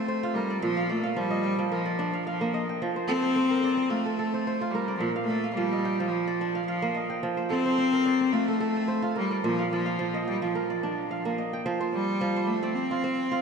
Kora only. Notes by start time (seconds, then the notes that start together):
Already playing: F3 C4 F4 A4 D5
0.08 C5
0.23 F4
0.36 A#4
0.50 D5
0.62 A#2
0.77 F5
0.89 D5
1.03 F5
1.17 F3
1.31 D#5
1.44 G5
1.59 F3
1.72 A#4
1.86 D5
1.99 D4
2.13 F5
2.27 F5
2.41 A#3
2.54 D#5
2.69 G5
2.82 F3
2.96 C5
3.09 A4
3.22 C5
3.36 C4
3.51 A#4
3.64 D5
3.77 C4
3.90 F4
4.06 A4
4.19 A4
4.34 C5
4.47 C5
4.61 F4
4.75 A#4
4.88 D5
5.00 A#2
5.16 F5
5.30 D5
5.44 F5
5.57 F3
5.73 D#5
5.85 G5
6.00 F3
6.27 D5
6.41 D4
6.55 F5
6.68 F5
6.82 A#3
6.95 D#5
7.10 G5
7.23 F3
7.37 C5
7.50 A4
7.66 C5
7.78 C4
7.93 A#4
8.06 D5
8.21 C4
8.33 F4
8.48 A4
8.60 A4
8.76 C5
8.88 C5
9.02 F4
9.16 A#4
9.31 D5
9.44 A#2
9.59 F5
9.73 D5
9.86 F5
9.99 F3
10.14 D#5
10.28 G5
10.42 F3
10.55 A#4
10.70 D5
10.83 D4
11.11 F5
11.25 A#3
11.38 D#5
11.53 G5
11.66 F3 C5
11.81 C5
12.21 F3
12.36 C5
12.63 C4 D5
12.91 F4
13.04 C4
13.32 F4